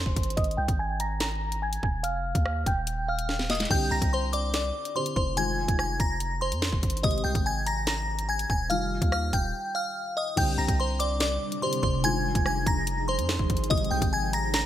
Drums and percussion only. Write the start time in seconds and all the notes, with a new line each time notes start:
0.06 kick
0.16 kick, closed hi-hat
0.23 closed hi-hat
0.30 closed hi-hat
0.37 kick, closed hi-hat
0.44 closed hi-hat
0.51 closed hi-hat
0.68 kick, closed hi-hat
1.00 closed hi-hat
1.20 snare, closed hi-hat
1.52 closed hi-hat
1.73 closed hi-hat
1.83 kick
2.04 closed hi-hat
2.35 kick, closed hi-hat
2.46 cross-stick
2.66 kick, closed hi-hat
2.87 closed hi-hat
3.19 closed hi-hat
3.29 snare
3.39 snare
3.50 snare, closed hi-hat, open hi-hat
3.55 closed hi-hat
3.60 snare, closed hi-hat
3.65 closed hi-hat
3.71 kick, crash
4.02 kick, closed hi-hat
4.33 closed hi-hat
4.54 snare, closed hi-hat
4.85 closed hi-hat
5.06 closed hi-hat
5.16 kick
5.37 closed hi-hat
5.68 kick, closed hi-hat
5.79 cross-stick
6.00 kick, closed hi-hat
6.20 closed hi-hat
6.52 closed hi-hat
6.62 snare
6.73 kick
6.83 kick, closed hi-hat
6.90 closed hi-hat
6.97 closed hi-hat
7.04 kick, closed hi-hat
7.11 closed hi-hat
7.18 closed hi-hat
7.35 kick, closed hi-hat
7.67 closed hi-hat
7.87 snare, closed hi-hat
8.19 closed hi-hat
8.39 closed hi-hat
8.50 kick
8.70 closed hi-hat
9.02 kick, closed hi-hat
9.12 cross-stick
9.33 kick, closed hi-hat
10.37 kick, closed hi-hat, crash
10.68 kick, closed hi-hat
11.00 closed hi-hat
11.20 snare, closed hi-hat
11.52 closed hi-hat
11.73 closed hi-hat
11.83 kick
12.04 closed hi-hat
12.35 kick, closed hi-hat
12.46 cross-stick
12.66 kick, closed hi-hat
12.87 closed hi-hat
13.19 closed hi-hat
13.29 snare
13.39 kick
13.50 kick, closed hi-hat
13.57 closed hi-hat
13.64 closed hi-hat
13.71 kick, closed hi-hat
13.78 closed hi-hat
13.84 closed hi-hat
14.02 kick, closed hi-hat
14.33 closed hi-hat
14.54 snare, closed hi-hat